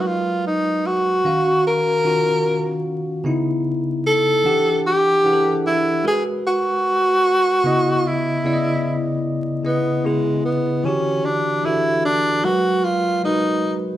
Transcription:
0.00 1.10 F#3 medium
0.00 1.09 G#3 medium
0.00 0.08 F#4 medium
0.00 1.10 A#4 medium
0.00 1.10 B4 medium
0.07 0.46 F4 medium
0.47 0.88 D#4 medium
0.86 1.65 F#4 loud
1.24 1.97 D#3 medium
1.24 1.97 C#4 medium
1.24 1.98 F#4 medium
1.24 1.98 F5 medium
1.67 2.82 A#4 loud
2.04 3.13 D#3 medium
2.04 3.13 C#4 medium
2.04 3.14 F4 medium
2.04 3.14 F#4 medium
3.24 4.44 C#3 medium
3.24 4.45 B3 medium
3.24 4.45 D#4 medium
3.24 4.46 E4 medium
4.07 4.82 A4 loud
4.44 5.17 E3 medium
4.44 5.17 D4 medium
4.44 5.18 G4 medium
4.44 5.18 F#5 medium
4.87 5.62 G4 loud
5.24 6.04 E3 medium
5.24 6.05 D4 medium
5.24 5.33 G#4 medium
5.24 6.05 F#5 medium
5.33 6.09 A4 medium
5.67 6.03 E4 medium
6.04 7.49 G#3 medium
6.04 7.49 F#4 medium
6.04 6.23 G#4 medium
6.04 7.50 A#4 medium
6.04 7.50 B4 medium
6.47 8.09 F#4 loud
7.64 8.37 C#3 medium
7.64 8.37 B3 medium
7.64 8.38 E4 medium
7.64 8.38 D#5 loud
8.07 9.26 E4 medium
8.44 9.53 C#3 medium
8.44 9.53 B3 medium
8.44 9.54 E4 medium
8.44 8.52 D5 medium
8.53 9.57 D#5 medium
9.64 10.00 C#3 medium
9.64 10.01 B3 medium
9.64 10.08 B3 medium
9.64 10.01 E4 medium
9.64 10.01 D#5 medium
10.04 10.84 C#3 medium
10.04 10.44 G#3 medium
10.04 10.85 B3 medium
10.04 10.85 E4 medium
10.04 10.85 G#4 medium
10.45 10.86 B3 medium
10.84 11.57 D3 medium
10.84 11.56 E3 medium
10.84 11.27 C#4 medium
10.84 11.57 F#4 medium
10.84 11.58 G4 medium
11.25 11.67 D4 loud
11.64 12.44 E3 medium
11.64 12.45 D4 medium
11.64 12.04 E4 medium
11.64 12.45 F#4 medium
11.64 12.45 A4 medium
12.05 12.46 D4 loud
12.44 13.17 F#3 medium
12.44 13.17 G#3 medium
12.44 12.86 F#4 loud
12.44 13.17 A#4 medium
12.44 13.18 B4 medium
12.84 13.24 F4 loud
13.24 13.97 G#3 medium
13.24 13.75 D#4 medium
13.24 13.97 F#4 medium
13.24 13.97 A#4 medium
13.24 13.97 B4 medium

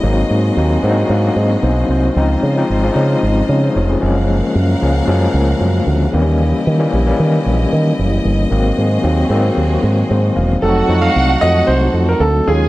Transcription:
0.00 0.23 G#1 loud
0.00 0.43 F#3 medium
0.00 0.43 A#3 medium
0.00 2.14 G#4 medium
0.00 2.12 D#5 medium
0.04 2.14 C4 medium
0.04 0.43 C4 medium
0.04 0.44 D#4 loud
0.04 2.14 F#4 medium
0.30 0.50 G#2 medium
0.57 0.76 D#2 medium
0.57 0.77 F#3 medium
0.57 0.77 A#3 medium
0.57 0.77 C4 medium
0.57 0.77 D#4 medium
0.83 1.03 G#2 medium
0.83 1.60 F#3 medium
0.83 1.60 A#3 medium
0.83 1.60 C4 medium
0.83 0.91 D4 medium
0.83 1.08 F#5 medium
0.91 1.64 D#4 medium
1.10 1.29 G#2 loud
1.10 1.35 F5 medium
1.36 1.55 G#2 medium
1.36 1.61 D#5 medium
1.63 1.82 B1 loud
1.63 1.88 C5 medium
1.89 2.08 C2 medium
1.89 2.15 C5 medium
2.16 2.35 C#2 loud
2.16 8.47 C#3 medium
2.16 2.45 F3 medium
2.16 2.45 G#3 medium
2.16 2.45 C4 medium
2.16 2.46 D#4 medium
2.16 4.00 F4 medium
2.16 4.00 C5 medium
2.16 4.00 D#5 medium
2.43 2.62 C#3 medium
2.57 2.75 F3 medium
2.57 2.75 G#3 medium
2.57 2.76 C4 medium
2.57 2.76 D#4 medium
2.70 2.89 G#1 medium
2.84 3.59 F3 medium
2.84 3.60 G#3 medium
2.84 3.48 C4 medium
2.84 2.90 C#4 medium
2.92 3.15 C#3 medium
2.92 3.53 D#4 medium
3.23 3.42 G#1 medium
3.49 3.68 C#3 medium
3.49 3.62 C4 soft
3.49 3.62 G#4 medium
3.63 3.75 D#4 medium
3.63 3.75 C5 medium
3.76 3.95 F1 loud
3.76 3.89 F4 medium
3.76 3.89 C#5 medium
3.89 4.14 C4 medium
3.89 4.14 G#4 medium
4.00 4.41 F#1 loud
4.00 4.65 F3 medium
4.00 4.65 G#3 medium
4.00 4.66 A#3 medium
4.00 4.66 C#4 loud
4.00 6.11 A#4 medium
4.00 6.11 F5 medium
4.00 6.10 F#5 medium
4.55 4.74 F#2 medium
4.81 5.01 C#2 medium
4.81 5.00 F3 medium
4.81 5.00 G#3 medium
4.81 5.01 A#3 medium
4.81 5.01 C#4 medium
5.07 5.27 F#2 medium
5.07 5.83 F3 medium
5.07 5.84 G#3 medium
5.07 5.14 A3 medium
5.07 5.84 C#4 medium
5.14 5.87 A#3 medium
5.34 5.53 C#2 loud
5.61 5.80 F#2 medium
5.87 6.06 D2 loud
6.11 6.52 D#2 loud
6.11 6.66 E3 medium
6.11 6.66 G3 medium
6.11 6.66 A#3 medium
6.11 6.20 C4 medium
6.11 8.48 E4 medium
6.11 8.48 G4 medium
6.11 10.58 D#5 medium
6.20 6.69 C#4 loud
6.67 6.86 D#3 medium
6.79 6.98 E3 medium
6.79 6.98 G3 medium
6.79 6.98 A#3 medium
6.79 6.99 C#4 medium
6.93 7.12 A#1 medium
7.06 7.82 E3 medium
7.06 7.82 G3 medium
7.06 7.82 A#3 medium
7.06 7.82 C#4 medium
7.20 7.38 D#3 medium
7.46 7.65 A#1 medium
7.73 7.92 D#3 medium
7.99 8.18 F#1 medium
8.25 8.44 G1 loud
8.50 8.70 G#1 loud
8.50 8.89 D#3 medium
8.50 8.90 F#3 medium
8.50 8.90 A#3 medium
8.50 10.60 C4 medium
8.50 8.90 C4 medium
8.50 10.60 F#4 medium
8.50 10.60 G#4 medium
8.78 8.97 G#2 medium
9.03 9.23 D#2 medium
9.03 9.23 D#3 medium
9.03 9.23 F#3 medium
9.03 9.23 A#3 medium
9.03 9.24 C4 medium
9.30 9.49 G#2 loud
9.30 10.06 D#3 medium
9.30 10.07 F#3 medium
9.30 10.07 A#3 medium
9.30 10.07 C4 medium
9.57 9.76 D#2 medium
9.83 10.02 G#2 medium
10.09 10.29 G#2 loud
10.09 10.34 C5 medium
10.36 10.56 E1 loud
10.36 10.61 F5 medium
10.62 10.81 F1 medium
10.62 12.45 F#3 medium
10.62 10.82 F#3 medium
10.62 10.82 A3 medium
10.62 10.82 C4 medium
10.62 12.45 D#4 medium
10.62 10.83 D#4 medium
10.62 12.18 F#4 medium
10.62 11.04 A4 medium
10.62 12.46 A4 medium
10.62 12.18 F#5 loud
10.88 11.08 F2 medium
10.88 11.27 F#3 medium
10.88 10.96 G#3 soft
10.88 11.28 C4 medium
10.88 11.28 D#4 medium
10.95 11.31 A3 medium
11.02 11.42 F5 medium
11.16 11.35 C2 medium
11.41 11.61 F2 loud
11.41 12.17 F#3 medium
11.41 12.18 A3 medium
11.41 12.18 C4 medium
11.41 12.18 F#4 medium
11.41 11.69 D#5 loud
11.67 11.87 C2 loud
11.67 12.09 C5 medium
11.94 12.13 F2 medium
12.09 12.21 A#4 medium
12.20 12.40 D2 loud
12.20 12.48 A4 medium
12.46 12.69 D#2 medium
12.46 12.69 D#3 medium
12.46 12.53 F3 medium
12.46 12.69 G#3 medium
12.46 12.69 C#4 medium
12.46 12.69 F4 medium
12.46 12.69 G#4 medium
12.46 12.69 G#4 loud
12.46 12.69 G#5 loud
12.52 12.69 F#3 medium

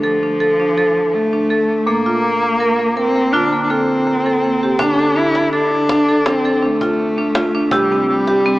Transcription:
0.00 1.82 D3 medium
0.00 1.15 F3 medium
0.00 0.23 A4 medium
0.23 0.40 D4 medium
0.40 0.59 A4 medium
0.60 0.77 D4 medium
0.78 1.14 A4 medium
1.13 1.88 A3 medium
1.33 1.50 D4 medium
1.50 1.87 A4 medium
1.87 3.30 A#2 medium
1.87 2.98 A#3 medium
1.87 2.06 A#3 medium
2.06 2.43 F4 medium
2.43 2.60 A#3 medium
2.60 2.79 A#4 medium
2.79 2.97 A#3 medium
2.96 3.34 C4 medium
2.96 3.16 A#4 medium
3.16 3.33 A#3 medium
3.32 4.76 D3 medium
3.32 3.62 D4 medium
3.32 3.52 F4 medium
3.53 3.70 A#3 medium
3.63 3.72 D4 medium
3.70 4.82 C4 medium
3.70 4.06 A4 medium
4.07 4.26 A#3 medium
4.26 4.43 A4 soft
4.44 4.62 A#3 medium
4.63 4.80 G4 medium
4.79 7.68 D3 medium
4.79 4.99 D4 medium
4.79 5.18 D4 medium
4.79 cajon bass medium
4.99 5.16 A4 medium
5.16 5.53 D4 medium
5.16 5.53 E4 medium
5.35 cajon slap soft
5.53 6.29 D4 medium
5.53 5.89 A4 medium
5.89 6.08 D4 medium
5.89 cajon bass medium
5.89 cajon slap soft
6.09 6.26 A4 medium
6.26 6.66 C4 medium
6.26 6.45 D4 medium
6.26 cajon slap soft
6.45 6.62 A4 medium
6.45 cajon slap soft
6.63 7.74 A3 medium
6.63 6.82 D4 medium
6.81 7.18 F4 medium
6.81 cajon bass soft
7.18 7.35 D4 medium
7.35 7.55 F4 medium
7.35 cajon slap medium
7.55 7.72 D4 medium
7.71 8.59 C3 medium
7.71 8.09 G3 medium
7.71 7.91 G4 medium
7.71 cajon bass medium
7.92 8.28 C4 medium
8.10 8.59 G3 medium
8.27 8.45 G4 medium
8.27 cajon slap soft
8.46 8.59 C4 medium

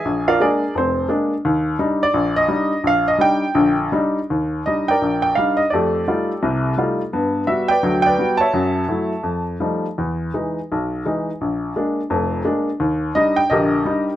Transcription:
0.00 0.24 G#4 medium
0.00 0.23 G#5 medium
0.05 0.35 A#1 medium
0.28 0.40 F4 medium
0.28 0.40 A#4 medium
0.28 0.40 D5 medium
0.28 0.40 F5 medium
0.40 0.63 G#3 medium
0.40 0.63 A#3 soft
0.40 0.63 D4 medium
0.40 0.73 G#4 medium
0.40 0.73 A#4 medium
0.40 0.73 D5 medium
0.75 1.05 F1 medium
0.75 1.10 C4 medium
0.75 1.09 C5 medium
1.09 1.33 G#3 medium
1.09 1.33 A#3 medium
1.09 1.33 D4 medium
1.45 1.75 D#2 medium
1.79 2.02 G3 medium
1.79 2.03 D4 medium
1.79 2.03 D#4 medium
2.03 2.35 D5 loud
2.14 2.44 A#1 medium
2.36 2.81 D#5 loud
2.48 2.72 G3 medium
2.48 2.72 D4 medium
2.48 2.72 D#4 medium
2.84 3.14 A#1 medium
2.84 3.07 F5 medium
3.08 3.20 D#5 medium
3.18 3.43 G3 medium
3.18 3.43 D4 medium
3.18 3.43 D#4 medium
3.18 3.75 G5 loud
3.54 3.87 A#1 medium
3.54 3.87 D3 medium
3.92 4.18 G3 medium
3.92 4.18 D4 medium
3.92 4.18 D#4 medium
4.30 4.61 D#2 medium
4.66 4.90 G3 soft
4.66 4.90 D4 soft
4.66 4.91 D#4 medium
4.66 4.89 D#5 medium
4.88 5.57 A#4 medium
4.88 5.57 D5 medium
4.88 5.21 G5 medium
5.02 5.32 A#1 medium
5.22 5.36 G5 medium
5.35 5.61 G3 soft
5.35 5.61 D4 soft
5.35 5.61 D#4 medium
5.35 5.59 F5 medium
5.57 5.72 D#5 medium
5.70 6.03 F2 medium
5.70 6.04 A3 medium
5.70 6.96 G4 medium
5.70 6.94 D5 medium
5.75 6.96 A4 medium
6.08 6.31 G3 soft
6.08 6.31 A3 soft
6.08 6.31 D#4 soft
6.08 6.31 F4 medium
6.43 6.73 C2 medium
6.43 6.73 C3 medium
6.78 7.01 G3 medium
6.78 7.01 A3 soft
6.78 7.01 D#4 soft
6.78 7.01 F4 medium
7.13 7.43 G2 medium
7.13 7.43 B3 medium
7.47 7.71 G3 soft
7.47 7.71 B3 soft
7.47 7.71 F#4 medium
7.47 7.70 E5 medium
7.68 8.05 B4 medium
7.68 8.05 D5 medium
7.68 8.01 G5 loud
7.83 8.13 D2 medium
7.83 8.13 F#3 medium
8.02 8.50 D5 medium
8.02 8.36 G5 loud
8.07 8.51 B4 medium
8.19 8.42 G3 soft
8.19 8.42 B3 soft
8.19 8.42 F#4 medium
8.37 9.20 C#5 medium
8.37 9.21 E5 medium
8.37 9.42 A5 medium
8.53 8.83 F#2 medium
8.53 8.83 F#3 medium
8.88 9.12 F#3 soft
8.88 9.12 A3 soft
8.88 9.12 E4 medium
9.23 9.55 F2 medium
9.60 9.85 F3 medium
9.60 9.85 G3 soft
9.60 9.85 A3 soft
9.60 9.86 D#4 medium
9.98 10.29 E2 medium
10.34 10.58 E3 soft
10.34 10.58 G#3 soft
10.34 10.58 D#4 medium
10.72 11.02 B1 medium
11.06 11.29 E3 medium
11.06 11.29 G#3 soft
11.06 11.30 D#4 medium
11.41 11.71 A#1 medium
11.76 12.00 G#3 medium
11.76 12.00 A#3 soft
11.76 12.00 D4 medium
12.10 12.41 F1 medium
12.10 12.41 F2 medium
12.45 12.69 G#3 medium
12.45 12.69 A#3 medium
12.45 12.69 D4 medium
12.80 13.11 D#2 medium
13.15 13.39 G3 medium
13.15 13.39 D4 medium
13.15 13.40 D#4 medium
13.15 13.36 D#5 medium
13.36 13.51 G5 medium
13.50 13.81 A#1 medium
13.50 13.81 D3 medium
13.50 14.16 G4 medium
13.50 14.16 A#4 medium
13.50 14.03 D#5 medium
13.85 14.09 G3 medium
13.85 14.09 D4 medium
13.85 14.09 D#4 medium

